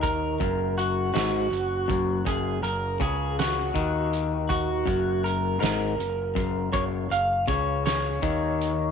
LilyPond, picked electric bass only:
\new Staff \with { instrumentName = "Picked electric bass" } { \clef bass \time 6/8 \key ges \major \tempo 4. = 54 ees,8 ges,,4 aes,,8 ges,,8 ges,,8 | ges,,8 ges,,8 des,4 ees,4~ | ees,8 ges,,4 aes,,8 ges,,8 ges,,8 | ges,,8 ges,,8 des,4 ees,4 | }